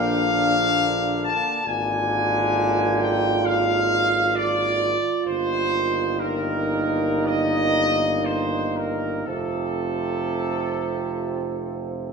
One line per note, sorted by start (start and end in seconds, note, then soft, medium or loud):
0.00 1.49 A#1 medium
0.00 1.62 D3 medium
0.00 1.61 A#3 medium
0.00 1.48 D4 medium
0.00 1.22 F5 loud
1.24 1.66 A5 loud
1.65 4.95 G#1 medium
1.65 4.96 D3 medium
1.65 4.95 A#3 medium
1.65 6.15 F4 medium
1.65 3.03 G#5 loud
3.01 3.47 G5 loud
3.45 4.36 F5 loud
4.35 5.26 D5 loud
5.25 9.24 G1 medium
5.25 9.23 D#3 medium
5.25 9.29 A#3 medium
5.25 6.18 C5 loud
6.18 9.27 D#4 medium
6.18 7.27 A#4 medium
7.26 8.27 D#5 loud
8.25 8.76 C5 loud
8.76 9.28 A#4 medium
9.25 12.13 F1 medium
9.25 12.13 C3 medium
9.25 12.13 C4 medium
9.25 12.13 F4 medium
9.25 12.13 A4 medium